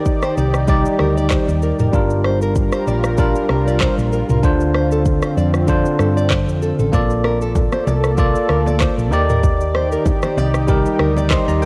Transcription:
Already playing: tine electric piano D#3 D#4 G4 D5, analog synth pad D#4 G4 D5
0.05 kick, shaker
0.22 nylon-string guitar C5, cross-stick, shaker
0.37 fingered electric bass C2, nylon-string guitar D5, shaker
0.54 cross-stick, shaker
0.67 tine electric piano G3 D#4 G4 D5, nylon-string guitar D5, kick, shaker
0.85 shaker
0.99 fingered electric bass D2, nylon-string guitar A#4, cross-stick
1.17 nylon-string guitar D5, shaker
1.30 nylon-string guitar C5, kick, cross-stick, clap, shaker
1.48 fingered electric bass D#2, shaker
1.62 nylon-string guitar A#4, shaker
1.79 fingered electric bass F1, nylon-string guitar A#4, mid tom, shaker
1.92 fingered electric bass G1, tine electric piano G3 D4 F4 A#4, analog synth pad G3 F4 A#4, kick, shaker
2.10 shaker
2.24 nylon-string guitar C5, cross-stick
2.42 nylon-string guitar A#4, shaker
2.55 kick, shaker
2.72 nylon-string guitar C5, cross-stick, shaker
2.87 fingered electric bass A#1, nylon-string guitar D5, shaker
3.04 cross-stick, shaker
3.17 tine electric piano G3 D4 F4 A#4, nylon-string guitar D5, kick, shaker
3.35 shaker
3.49 fingered electric bass C2, nylon-string guitar A#4, cross-stick
3.68 nylon-string guitar D5, shaker
3.80 nylon-string guitar C5, kick, cross-stick, clap, shaker
3.98 fingered electric bass A#1, shaker
4.12 nylon-string guitar A#4, shaker
4.29 fingered electric bass C2, nylon-string guitar A#4, mid tom, shaker
4.42 fingered electric bass D2, tine electric piano D3 D4 F4 C5, analog synth pad D3 C4, kick, shaker
4.60 shaker
4.75 nylon-string guitar C5, cross-stick
4.92 nylon-string guitar A4, shaker
5.06 kick, shaker
5.22 nylon-string guitar C5, cross-stick, shaker
5.37 fingered electric bass F2, nylon-string guitar D5, shaker
5.54 cross-stick, shaker
5.67 tine electric piano D3 D4 F4 C5, nylon-string guitar D5, kick, shaker
5.86 shaker
5.99 fingered electric bass G2, nylon-string guitar A4, cross-stick, shaker
6.17 nylon-string guitar D5, shaker
6.30 nylon-string guitar C5, kick, cross-stick, clap, shaker
6.48 fingered electric bass F2, shaker
6.62 nylon-string guitar A4, shaker
6.79 fingered electric bass A1, nylon-string guitar A4, mid tom, shaker
6.92 fingered electric bass A#1, tine electric piano A#3 F4 A4 D5, analog synth pad A#3 A4 D5, kick, low conga, shaker
7.10 shaker
7.24 nylon-string guitar A#4, cross-stick, low bongo
7.42 nylon-string guitar A4, shaker
7.55 kick, high bongo, low conga, shaker
7.72 nylon-string guitar C5, cross-stick, low bongo, shaker
7.87 fingered electric bass C2, nylon-string guitar D5, low bongo, shaker
8.04 cross-stick, shaker
8.17 tine electric piano A#3 F4 A4 D5, nylon-string guitar D5, kick, low conga, shaker
8.36 shaker
8.49 fingered electric bass D2, nylon-string guitar A#4, cross-stick
8.66 nylon-string guitar D5, low bongo, shaker
8.80 nylon-string guitar C5, kick, cross-stick, clap, high bongo, shaker
8.98 fingered electric bass A#1, shaker
9.11 fingered electric bass D#2, tine electric piano D#3 D#4 G4 D5, analog synth pad D#4 G4, nylon-string guitar A#4, high bongo, shaker
9.29 nylon-string guitar A#4, mid tom, shaker
9.43 kick, low conga, shaker
9.60 shaker
9.74 nylon-string guitar C5, cross-stick, low bongo
9.92 nylon-string guitar A#4, shaker
10.05 kick, high bongo, low conga, shaker
10.22 nylon-string guitar C5, cross-stick, low bongo, shaker
10.37 fingered electric bass C2, nylon-string guitar D5, low bongo, shaker
10.54 cross-stick, shaker
10.67 tine electric piano G3 D#4 G4 A#4, nylon-string guitar D5, kick, low conga, shaker
10.86 shaker
10.99 fingered electric bass D2, nylon-string guitar A#4, cross-stick
11.16 nylon-string guitar D5, low bongo, shaker
11.30 nylon-string guitar C5, tine electric piano D#5 C6, kick, cross-stick, clap, high bongo, shaker
11.48 fingered electric bass D#2, tine electric piano D5 A#5, shaker
11.62 tine electric piano G5, high bongo

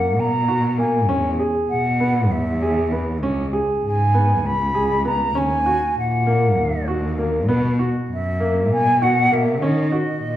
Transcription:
Already playing: cello F#2, grand piano A#3, flute F#5
0.18 cello B2, flute A#5
0.48 grand piano F#4
0.78 grand piano A#3, flute G#5
1.09 cello E2, grand piano C#4
1.39 grand piano G#4
1.69 cello B2, flute F#5
2.00 grand piano B3
2.31 cello E2, flute E5
2.62 grand piano G#4
2.92 grand piano B3
3.23 cello C#2, grand piano C#4
3.53 grand piano G#4
3.84 cello G#2, flute G#5
4.14 grand piano B3
4.44 cello C#2, flute B5
4.75 grand piano G#4
5.05 grand piano B3, flute A#5
5.35 cello D#2, grand piano C#4, flute G#5
5.66 grand piano F#4
5.97 cello A#2, flute F#5
6.27 grand piano A#3
6.58 cello D#2
6.88 grand piano F#4
7.18 grand piano A#3
7.48 cello B2, grand piano B3
7.79 grand piano F#4
8.11 cello F#2, flute E5
8.40 grand piano A#3
8.70 cello B2, flute G#5
9.02 grand piano F#4, flute F#5
9.32 grand piano A#3, flute E5
9.62 cello D#3, grand piano C#4, flute D#5
9.92 grand piano F#4
10.22 cello A#2

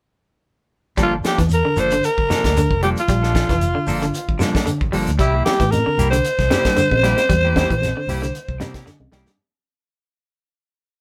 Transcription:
0.97 fingered electric bass G1, clean electric guitar F3 G3 A#3 D4 A4, kick, closed hi-hat, shekere
1.03 alto saxophone F4
1.23 clean electric guitar F3 A#3 D4 A4, alto saxophone G4, muted fingered electric bass stroke, snare, closed hi-hat, shekere
1.37 fingered electric bass E2, clean electric guitar E3, kick, snare, closed hi-hat, shekere
1.49 closed hi-hat, shekere
1.54 alto saxophone A#4
1.65 clean electric guitar D3, muted fingered electric bass stroke
1.76 fingered electric bass G1, clean electric guitar F3 A#3 D4 A4, alto saxophone C5, closed hi-hat, shekere
1.90 clean electric guitar D3, closed hi-hat, shekere
2.03 alto saxophone A#4, closed hi-hat, shekere
2.18 fingered electric bass G1, kick
2.30 clean electric guitar C3 F3 A#3 D4 A4, snare, closed hi-hat, shekere
2.44 fingered electric bass D2, clean electric guitar A#3 D4 A4, kick, snare, closed hi-hat, shekere
2.57 clean electric guitar D3, closed hi-hat, shekere
2.71 fingered electric bass F1, kick
2.82 clean electric guitar F3 G3 A#3 D4 A4, alto saxophone G4, closed hi-hat, shekere
2.97 alto saxophone F4, closed hi-hat, shekere
3.08 fingered electric bass A#1, clean electric guitar G3, kick, snare, closed hi-hat, shekere
3.23 clean electric guitar A#3 D4 A4, snare
3.35 clean electric guitar F3 D4 A4, kick, snare, closed hi-hat, shekere
3.49 fingered electric bass F1, clean electric guitar E3, kick, snare, closed hi-hat, shekere
3.61 closed hi-hat, shekere
3.75 clean electric guitar D3
3.87 fingered electric bass G1, clean electric guitar F3 A#3 D4 A4, open hi-hat, shekere
4.02 clean electric guitar D3, closed hi-hat, shekere
4.14 closed hi-hat, shekere
4.28 fingered electric bass G1, kick
4.39 fingered electric bass G2, clean electric guitar C3 F3 A#3 D4 A4, snare, closed hi-hat, shekere
4.55 clean electric guitar A#3 D4 A4, kick, snare, closed hi-hat, shekere
4.66 clean electric guitar D3, closed hi-hat, shekere
4.81 fingered electric bass G1, kick
4.92 fingered electric bass G1, clean electric guitar F3 G3 A#3 D4 A4, open hi-hat, shekere
5.07 fingered electric bass D2, closed hi-hat, shekere
5.19 fingered electric bass C2, clean electric guitar G3 E4 G4, alto saxophone E4, muted clean electric guitar stroke, kick, closed hi-hat, shekere
5.34 clean electric guitar A#3 E4 G4
5.45 clean electric guitar G3 A#3 E4 G4, alto saxophone G4, muted fingered electric bass stroke, snare, closed hi-hat, high conga, shekere
5.60 fingered electric bass A2, clean electric guitar E3, kick, snare, closed hi-hat, shekere
5.71 alto saxophone A#4, closed hi-hat, high conga, shekere
5.86 clean electric guitar D3, muted fingered electric bass stroke
5.98 fingered electric bass C2, clean electric guitar G3 A#3 E4 G4, closed hi-hat, shekere
6.10 clean electric guitar D3, alto saxophone C5, closed hi-hat, shekere
6.24 closed hi-hat, shekere
6.39 fingered electric bass C2, kick, snare
6.50 clean electric guitar C3 G3 A#3 E4 G4, snare, closed hi-hat, high conga, shekere
6.65 fingered electric bass G2, clean electric guitar A#3 E4 G4, kick, snare, closed hi-hat, shekere
6.76 clean electric guitar D3, closed hi-hat, shekere
6.91 fingered electric bass A#1, kick, high conga
7.03 clean electric guitar G3 A#3 E4 G4, snare, closed hi-hat, shekere
7.18 closed hi-hat, high conga, shekere
7.29 fingered electric bass E2, clean electric guitar G3, kick, closed hi-hat, shekere
7.44 clean electric guitar A#3 E4 G4
7.56 clean electric guitar G3 A#3 E4 G4, kick, snare, closed hi-hat, high conga, shekere
7.70 fingered electric bass A#1, clean electric guitar E3, kick, closed hi-hat, shekere
7.82 snare, closed hi-hat, high conga, shekere
7.97 clean electric guitar D3
8.07 fingered electric bass C2, clean electric guitar G3 A#3 E4 G4, open hi-hat, shekere
8.22 clean electric guitar D3, closed hi-hat, shekere
8.35 closed hi-hat, shekere
8.49 fingered electric bass C2, kick
8.60 clean electric guitar C3 G3 A#3 E4 G4, fingered electric bass C3, snare, closed hi-hat, high conga, shekere
8.74 clean electric guitar A#3 E4 G4, kick, snare, closed hi-hat, shekere
8.86 clean electric guitar D3, snare, shekere
9.00 fingered electric bass C2, high conga
9.12 fingered electric bass C2, clean electric guitar G3 A#3 E4 G4, snare, high conga, shekere
9.25 fingered electric bass G2, snare, shekere

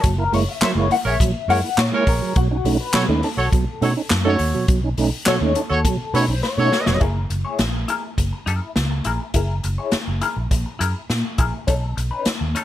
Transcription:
Already playing: clean electric guitar A4
0.03 fingered electric bass F#1, tonewheel organ F#3, kick, closed hi-hat
0.18 tonewheel organ A#3 E4, clean electric guitar A#4
0.32 fingered electric bass F#1, tonewheel organ G#3 A#3 E4, clean electric guitar C#5, open hi-hat
0.49 clean electric guitar E5
0.61 tonewheel organ F#3, horn section A#4 C#5 E5, clean electric guitar C5, muted fingered electric bass stroke, snare, clap, closed hi-hat
0.75 fingered electric bass F#1, tonewheel organ G#3 A#3 E4, clean electric guitar C#5
0.91 tonewheel organ A#3 E4, clean electric guitar F#5, open hi-hat
1.05 fingered electric bass A#1, horn section G#4 A#4 C#5, clean electric guitar E5
1.20 fingered electric bass A#1, tonewheel organ F#3, kick, closed hi-hat
1.48 fingered electric bass F#2, tonewheel organ G#3 A#3 E4, horn section G#4 A#4 C#5, clean electric guitar F#5, open hi-hat
1.64 tonewheel organ A#3 E4
1.78 fingered electric bass A#2, clean electric guitar C#5, snare, clap, closed hi-hat
1.92 tonewheel organ G#3 A#3 E4, horn section G#4 A#4 C#5
2.07 fingered electric bass A#1, clean electric guitar A#4, kick, open hi-hat
2.22 tonewheel organ F#3
2.36 fingered electric bass B1, tonewheel organ B2 F#3, clean electric guitar F#4, kick, closed hi-hat
2.51 tonewheel organ C#4 D#4
2.65 fingered electric bass B1, tonewheel organ A3 C#4 D#4, open hi-hat
2.80 clean electric guitar B4
2.93 tonewheel organ B2 F#3, horn section F#4 A4 C#5, muted fingered electric bass stroke, snare, clap, closed hi-hat
3.08 fingered electric bass D#2, tonewheel organ A3 C#4 D#4
3.23 tonewheel organ C#4 D#4, clean electric guitar A4, open hi-hat
3.37 fingered electric bass B1, horn section F#4 A4 C#5
3.52 fingered electric bass B1, tonewheel organ B2 F#3, kick, closed hi-hat
3.81 fingered electric bass B2, tonewheel organ A3 C#4 D#4, horn section F#4 A4 C#5, open hi-hat
3.97 tonewheel organ C#4 D#4
4.10 fingered electric bass F#2, snare, clap, closed hi-hat
4.25 tonewheel organ A3 C#4 D#4, horn section F#4 A4 C#5
4.39 fingered electric bass D#2, open hi-hat
4.54 tonewheel organ B2 F#3
4.68 fingered electric bass B1, tonewheel organ B2 F#3, kick, closed hi-hat
4.84 tonewheel organ C#4 D#4
4.98 fingered electric bass B1, tonewheel organ A3 C#4 D#4, open hi-hat
5.26 tonewheel organ B2 F#3, horn section F#4 A4 C#5, clean electric guitar C#5, muted fingered electric bass stroke, snare, clap, closed hi-hat
5.41 fingered electric bass D#2, tonewheel organ A3 C#4 D#4
5.55 tonewheel organ C#4 D#4, clean electric guitar A4, closed hi-hat
5.70 fingered electric bass D#2, horn section F#4 A4 C#5
5.84 fingered electric bass B2, tonewheel organ B2 F#3, clean electric guitar A4, kick, closed hi-hat
6.14 fingered electric bass B2, tonewheel organ A3 C#4 D#4, horn section F#4 A4 C#5, clean electric guitar B4, open hi-hat
6.28 fingered electric bass B1, tonewheel organ C#4 D#4, clean electric guitar C5
6.43 clean electric guitar C#5, snare
6.58 fingered electric bass B2, tonewheel organ A3 C#4 D#4, horn section F#4 A4 C#5
6.72 snare
6.86 fingered electric bass F1, tonewheel organ B2 F#3, snare
7.00 fingered electric bass F#1, clean electric guitar E4 G#4 A#4, kick, closed hi-hat
7.30 fingered electric bass F#1, muted clean electric guitar stroke, closed hi-hat
7.45 clean electric guitar E4 G#4 C#5
7.59 fingered electric bass A#1, snare, closed hi-hat
7.74 muted clean electric guitar stroke
7.88 clean electric guitar E4 G#4 A#4, closed hi-hat
8.03 muted clean electric guitar stroke
8.18 fingered electric bass F#1, muted clean electric guitar stroke, kick, closed hi-hat
8.33 muted clean electric guitar stroke
8.46 fingered electric bass F#2, clean electric guitar E4 G#4 A#4, closed hi-hat
8.62 muted clean electric guitar stroke
8.76 fingered electric bass C#2, snare, closed hi-hat
8.91 muted clean electric guitar stroke
9.04 fingered electric bass A#1, clean electric guitar E4 G#4 A#4, closed hi-hat
9.20 muted clean electric guitar stroke
9.34 fingered electric bass F#1, clean electric guitar E4 G#4 A#4, kick, closed hi-hat
9.63 fingered electric bass F#1, muted clean electric guitar stroke, closed hi-hat
9.78 clean electric guitar E4 G#4 C#5
9.92 muted fingered electric bass stroke, snare, closed hi-hat
10.07 fingered electric bass F#1, muted clean electric guitar stroke
10.21 clean electric guitar E4 G#4 A#4, closed hi-hat
10.37 fingered electric bass A#1, muted clean electric guitar stroke
10.51 fingered electric bass A#1, muted clean electric guitar stroke, kick, closed hi-hat
10.66 muted clean electric guitar stroke
10.79 fingered electric bass F#2, clean electric guitar E4 G#4 A#4, closed hi-hat
10.94 muted clean electric guitar stroke
11.10 fingered electric bass A#2, snare, closed hi-hat
11.23 muted clean electric guitar stroke
11.38 fingered electric bass A#1, clean electric guitar E4 G#4 A#4, kick, closed hi-hat
11.53 muted clean electric guitar stroke
11.67 fingered electric bass B1, clean electric guitar C#4 D#4 A4, kick, closed hi-hat
11.96 fingered electric bass B1, muted clean electric guitar stroke, closed hi-hat
12.11 clean electric guitar C#4 D#4 B4
12.25 muted fingered electric bass stroke, snare, closed hi-hat
12.40 fingered electric bass D#2, muted clean electric guitar stroke
12.55 clean electric guitar C#4 D#4 A4, closed hi-hat

